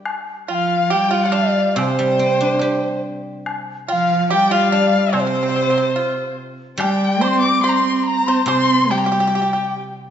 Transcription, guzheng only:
X:1
M:4/4
L:1/16
Q:1/4=71
K:none
V:1 name="Guzheng"
[G,DG_Bd]4 z4 C, G, C D G4- | G4 z12 | G,8 C,8 |]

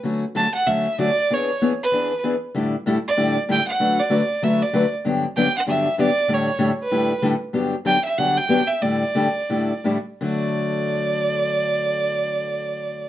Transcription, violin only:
X:1
M:4/4
L:1/8
Q:"Swing" 1/4=192
K:D
V:1 name="Violin"
z2 a f e2 d2 | c2 z B3 z2 | z3 d2 z g f- | f d3 e d2 z |
z2 g f e2 d2 | c2 z B3 z2 | z2 g e f g2 e | d6 z2 |
d8- | d8 |]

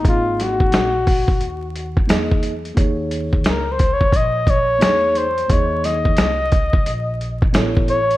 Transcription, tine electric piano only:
X:1
M:4/4
L:1/16
Q:"Swing 16ths" 1/4=88
K:Ebdor
V:1 name="Tine electric piano"
[B,EAe]4- [B,EAe] z6 z [B,EAe]2 z2 | [B,EAd]4- [B,EAd] z6 z [B,EAd]2 z2 | [B,EAe]4- [B,EAe] z6 z [=B,=E=A^c]2 z2 |]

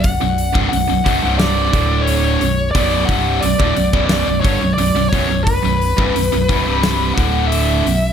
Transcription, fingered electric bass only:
X:1
M:4/4
L:1/16
Q:1/4=88
K:Bm
V:1 name="Fingered electric bass" clef=bass
B,,,, B,,,,2 =C,,, B,,,, B,,,, B,,,, C,,,3 D,,,4 B,,,,2 | B,,,,2 =C,,,2 B,,,, D,,, B,,,, B,,,,2 B,,,, G,,, B,,,, B,,,, B,,,, B,,,, B,,,,- | B,,,, B,,,,2 =C,,, B,,,, B,,,, B,,,, C,,,3 D,,,4 B,,,,2 |]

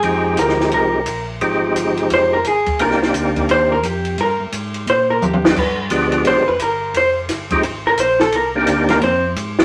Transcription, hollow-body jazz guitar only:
X:1
M:4/4
L:1/8
Q:"Swing" 1/4=174
K:Cm
V:1 name="Hollow-body jazz guitar"
A2 B2 B3 z | z4 c B A2 | B z3 c B G2 | B z3 c B G2 |
=B z3 c B _B2 | c z4 B c =A | B z2 [B,B] [Cc] z3 |]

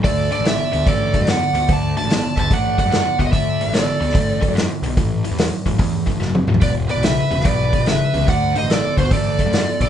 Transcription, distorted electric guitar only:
X:1
M:4/4
L:1/8
Q:"Swing" 1/4=146
K:Dlyd
V:1 name="Distorted electric guitar" clef=bass
[D,A,] [D,A,] [D,B,] [D,B,] [D,A,] [D,A,] [D,B,] [D,B,] | [D,A,] [D,A,] [D,B,] [D,B,] [D,A,] [D,A,] [D,B,] [D,B,] | [D,A,] [D,A,] [D,B,] [D,B,] [D,A,] [D,A,] [D,B,] [D,B,] | [A,,E,] [A,,E,] [A,,F,] [A,,F,] [A,,E,] [A,,E,] [A,,F,] [A,,F,] |
[E,,B,,] [E,,B,,] [E,,C,] [E,,C,] [E,,B,,] [E,,B,,] [E,,C,] [E,,C,] | [D,A,] [D,A,] [D,B,] [D,B,] [D,A,] [D,A,] [D,B,] [D,B,] |]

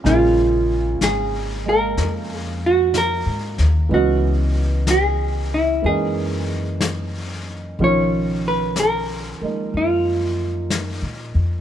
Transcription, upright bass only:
X:1
M:4/4
L:1/8
Q:"Swing" 1/4=62
K:A#phr
V:1 name="Upright bass" clef=bass
A,,,2 G,,,2 E,,2- (3E,, G,, D,, | C,,4 F,,4 | B,,,3 z F,,2- (3F,, A,, E,, |]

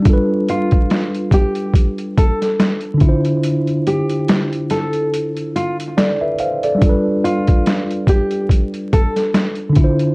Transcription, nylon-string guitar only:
X:1
M:4/4
L:1/16
Q:"Swing 16ths" 1/4=71
K:Gmix
V:1 name="Nylon-string guitar"
z2 F4 G2 z2 A z4 z | z2 G4 A2 z2 F z4 z | z2 F4 G2 z2 A z4 z |]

